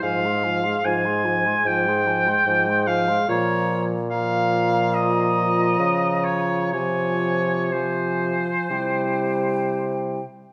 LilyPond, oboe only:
\new Staff \with { instrumentName = "Oboe" } { \time 4/4 \key f \minor \tempo 4 = 71 f''4 aes''4 g''4. f''8 | des''8 r8 f''4 ees''4. des''8 | des''4 c''2~ c''8 r8 | }